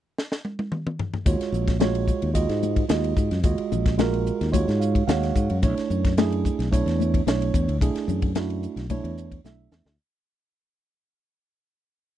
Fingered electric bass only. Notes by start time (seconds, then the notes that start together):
1.26 D#2
1.40 muted fingered electric bass stroke
1.52 A#1
2.23 D#2
2.49 G#2
2.90 D#2
3.17 G#2
3.31 F#2
3.44 D#2
3.59 muted fingered electric bass stroke
3.72 A#1
4.41 D#2
4.68 G#2
5.08 D#2
5.35 G#2
5.51 F#2
5.63 B1
5.90 F#2
6.59 B1
6.86 E2
7.27 B1
7.54 E2
7.68 D2
7.81 B1
8.08 F#2
8.76 B1
9.04 E2
9.44 B1
9.71 E2
9.86 D2